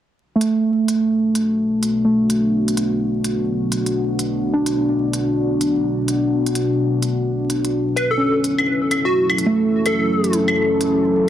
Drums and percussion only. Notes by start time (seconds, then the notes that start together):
0.41 closed hi-hat
0.88 closed hi-hat
1.35 closed hi-hat
1.83 closed hi-hat
2.30 closed hi-hat
2.68 closed hi-hat
2.77 closed hi-hat
3.24 closed hi-hat
3.72 closed hi-hat
3.86 closed hi-hat
4.19 closed hi-hat
4.66 closed hi-hat
5.13 closed hi-hat
5.61 closed hi-hat
6.08 closed hi-hat
6.46 closed hi-hat
6.55 closed hi-hat
7.03 closed hi-hat
7.50 closed hi-hat
7.64 closed hi-hat
7.97 closed hi-hat, claves
8.44 closed hi-hat
8.59 claves
8.91 closed hi-hat, claves
9.30 claves
9.38 closed hi-hat
9.86 closed hi-hat, claves
10.24 closed hi-hat
10.33 closed hi-hat
10.48 claves
10.81 closed hi-hat